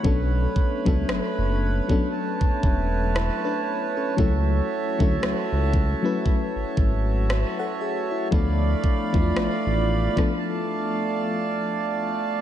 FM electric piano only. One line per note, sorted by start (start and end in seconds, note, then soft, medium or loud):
0.03 0.75 F#3 medium
0.03 0.75 B3 medium
0.03 0.76 C#4 medium
0.03 0.76 D4 medium
0.03 0.76 A4 medium
0.85 1.75 F#3 medium
0.85 1.75 B3 medium
0.85 1.75 C#4 medium
0.85 1.76 D4 medium
0.85 1.76 A4 medium
1.88 3.67 F#3 medium
1.88 3.67 B3 medium
1.88 3.15 C#4 medium
1.88 3.15 D4 medium
1.88 3.16 A4 medium
3.15 3.44 E4 medium
3.15 3.43 C#5 medium
3.15 4.14 B5 medium
3.45 3.94 D4 medium
3.45 3.94 B4 medium
3.97 4.17 C#4 medium
3.97 4.19 A4 medium
4.17 4.88 F#3 medium
4.17 4.89 A3 medium
4.17 4.89 C#4 medium
4.17 4.90 E4 medium
4.17 4.90 A4 medium
4.99 5.88 F#3 medium
4.99 5.89 A3 medium
4.99 5.89 C#4 medium
4.99 5.90 E4 medium
4.99 5.90 A4 medium
6.02 7.81 F#3 medium
6.02 7.81 A3 medium
6.02 7.82 C#4 medium
6.02 7.29 E4 medium
6.02 7.30 B4 medium
7.29 7.58 C#5 soft
7.29 7.57 A5 medium
7.59 7.80 A4 medium
7.59 7.80 F#5 medium
7.81 8.09 G#4 medium
7.81 8.09 E5 medium
8.11 8.60 E4 medium
8.11 8.60 C#5 medium
8.31 9.02 F3 medium
8.31 9.03 A3 medium
8.31 9.03 B3 medium
8.31 9.04 D4 medium
8.31 9.04 A4 medium
9.12 10.02 F3 medium
9.12 10.03 A3 medium
9.12 10.03 B3 medium
9.12 10.03 D4 medium
9.12 9.20 E4 medium
9.22 10.07 F4 medium
10.16 11.95 F3 medium
10.16 11.95 A3 medium
10.16 11.95 B3 medium
10.16 11.96 D4 medium
10.16 11.96 A4 medium